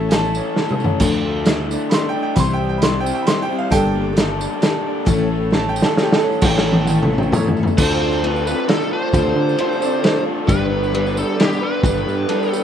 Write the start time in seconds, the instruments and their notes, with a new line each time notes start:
Already playing: picked electric bass A1, steel-string acoustic guitar A2 E3 A3 E4 A4, overdriven electric guitar A2 A3 A4, accordion C#5 E5 A5 E6, upright piano A5
0.09 steel-string acoustic guitar A3 C#4 E4, upright piano G#5, snare, closed hi-hat
0.13 steel-string acoustic guitar A4, overdriven electric guitar A4, upright piano A5
0.25 tambourine
0.35 overdriven electric guitar C#4, tambourine
0.54 steel-string acoustic guitar A3 C#4 E4 A4, snare
0.60 overdriven electric guitar A4
0.69 mid tom, tambourine
0.77 steel-string acoustic guitar A3 C#4 E4 A4, tambourine
0.82 overdriven electric guitar C#4, floor tom
0.99 picked electric bass D2, steel-string acoustic guitar D3 F3 A3 D4 E4 A4, accordion D5 E5 E6, kick, closed hi-hat, crash, tambourine
1.03 overdriven electric guitar D3
1.14 tambourine
1.25 overdriven electric guitar A3
1.45 steel-string acoustic guitar A3 D4 E4 A4, overdriven electric guitar E4, snare, closed hi-hat
1.71 overdriven electric guitar D4, tambourine
1.89 steel-string acoustic guitar A3 D4 E4 A4, overdriven electric guitar E4, upright piano B5, snare, closed hi-hat
1.94 upright piano C6, tambourine
2.09 upright piano G5
2.15 overdriven electric guitar D4
2.23 upright piano G5
2.35 picked electric bass C2, steel-string acoustic guitar C3 E3 G3 C4 E4 C5, overdriven electric guitar C3, accordion C5 E5 G5, upright piano B5, kick, closed hi-hat, tambourine
2.40 upright piano C6
2.53 upright piano G5
2.61 overdriven electric guitar G3
2.69 upright piano G5
2.78 steel-string acoustic guitar G3 C4 E4 C5, upright piano B5, closed hi-hat
2.83 overdriven electric guitar G4, upright piano C6, snare
3.00 steel-string acoustic guitar G3 C4 E4 C5, upright piano G5
3.06 overdriven electric guitar E4, tambourine
3.14 upright piano G5
3.22 steel-string acoustic guitar G3 C4, upright piano B5
3.27 steel-string acoustic guitar E4 C5, overdriven electric guitar G4, upright piano C6, snare, closed hi-hat, tambourine
3.42 upright piano G5
3.48 steel-string acoustic guitar G3 C4 E4 C5, overdriven electric guitar E4
3.58 upright piano F5
3.70 picked electric bass G1, overdriven electric guitar G2, steel-string acoustic guitar G3 A#3 D4 G4 A4, upright piano A4 G5, accordion A5, kick, closed hi-hat, tambourine
3.74 accordion D6
3.96 overdriven electric guitar A#3
4.13 steel-string acoustic guitar A#3 D4 G4 A4, closed hi-hat
4.18 overdriven electric guitar A4, snare
4.37 steel-string acoustic guitar D4 G4 A4, overdriven electric guitar D4, tambourine
4.60 steel-string acoustic guitar A#3 D4 G4 A4, overdriven electric guitar A4, snare, closed hi-hat
4.64 tambourine
4.87 overdriven electric guitar D4
5.05 picked electric bass A1, steel-string acoustic guitar A2 E3 A3 C#4 E4 A4, overdriven electric guitar A2, accordion C#5 E5 E6, kick, closed hi-hat, tambourine
5.19 tambourine
5.30 overdriven electric guitar A3
5.51 steel-string acoustic guitar A3 C#4 E4 A4, overdriven electric guitar A4, upright piano A5, snare, tambourine
5.69 upright piano G5
5.76 overdriven electric guitar C#4, tambourine
5.82 upright piano A4, snare
5.86 tambourine
5.95 steel-string acoustic guitar A3 C#4 E4 A4, snare, tambourine
5.99 upright piano G4, overdriven electric guitar A4
6.12 upright piano A4, snare
6.19 steel-string acoustic guitar A3 C#4 E4 A4, overdriven electric guitar C#4, tambourine
6.32 tambourine
6.42 picked electric bass A1, steel-string acoustic guitar A2 E3 A3 C#4 E4 A4, overdriven electric guitar A2 E3, accordion C#5 E5 A5 E6, upright piano F#5, kick, snare, crash, tambourine
6.46 overdriven electric guitar A3 C#4 A4, upright piano G5
6.58 upright piano A4, snare
6.66 tambourine
6.72 upright piano G5, high tom
6.85 steel-string acoustic guitar A3, upright piano F#5 G5, high tom, tambourine
6.89 steel-string acoustic guitar C#4 E4 A4
7.03 upright piano A4, mid tom
7.10 steel-string acoustic guitar A3 C#4 E4 A4
7.18 upright piano G5, mid tom
7.23 tambourine
7.32 picked electric bass E2, steel-string acoustic guitar A3 C#4 E4 A4, upright piano C#5, mid tom, tambourine
7.47 floor tom
7.57 steel-string acoustic guitar A3 C#4 E4 A4, tambourine
7.63 floor tom
7.68 tambourine
7.77 picked electric bass D2, steel-string acoustic guitar D3 A3 C4 F4 A4, overdriven electric guitar D3 D4, lead electric guitar C5, accordion C5 F5 A5 D6, kick, crash, tambourine
7.81 overdriven electric guitar F4 A4
8.01 overdriven electric guitar D4 F4 A4
8.13 tambourine
8.23 overdriven electric guitar D3 D4 F4 A4, steel-string acoustic guitar A3 C4 F4 A4, lead electric guitar B4, ride
8.36 tambourine
8.47 steel-string acoustic guitar C4 F4 A4, overdriven electric guitar D4 F4 A4, lead electric guitar B4, tambourine
8.68 steel-string acoustic guitar A3 F4 A4, lead electric guitar A4, snare, ride
8.82 tambourine
8.91 overdriven electric guitar D4 F4 A4, lead electric guitar C5
9.12 picked electric bass D2, steel-string acoustic guitar D3 A3 C4 F4 A4, overdriven electric guitar D3 D4 F4 A4, kick, ride, tambourine
9.36 picked electric bass D3, overdriven electric guitar D4 F4 A4
9.49 tambourine
9.57 overdriven electric guitar D3 D4 F4 A4, steel-string acoustic guitar A3 C4 F4 A4, upright piano C5, ride
9.72 tambourine
9.80 steel-string acoustic guitar C4 F4 A4, overdriven electric guitar D4 F4 A4, tambourine
9.84 upright piano D5
10.03 steel-string acoustic guitar A3 C4 F4 A4, snare, ride
10.16 tambourine
10.25 overdriven electric guitar D4 F4 A4
10.45 picked electric bass G1, steel-string acoustic guitar G3 D4 G4 B4, overdriven electric guitar G3 B3 D4, accordion B4 D5 G5, lead electric guitar B4, kick, ride, tambourine
10.50 overdriven electric guitar B4
10.69 overdriven electric guitar B3 D4 B4
10.84 tambourine
10.92 steel-string acoustic guitar G3 D4 G4 B4, overdriven electric guitar G3 B3 D4, ride
10.96 overdriven electric guitar B4
11.06 tambourine
11.16 overdriven electric guitar B3 D4 B4, lead electric guitar A4, tambourine
11.37 steel-string acoustic guitar G3 D4 G4 B4, lead electric guitar G4, snare, ride
11.52 tambourine
11.61 overdriven electric guitar B3 D4 B4, steel-string acoustic guitar D4 G4 B4, lead electric guitar B4
11.83 picked electric bass G1, steel-string acoustic guitar G3 D4 G4 B4, overdriven electric guitar G3 B3 D4 B4, kick, ride, tambourine
12.06 picked electric bass G2, overdriven electric guitar B3 D4 B4, tambourine
12.29 steel-string acoustic guitar G3 D4 G4 B4, overdriven electric guitar G3 B3 D4 B4, upright piano A4, ride, tambourine
12.43 tambourine
12.51 overdriven electric guitar B3 D4 B4, upright piano G4, lead electric guitar A4, tambourine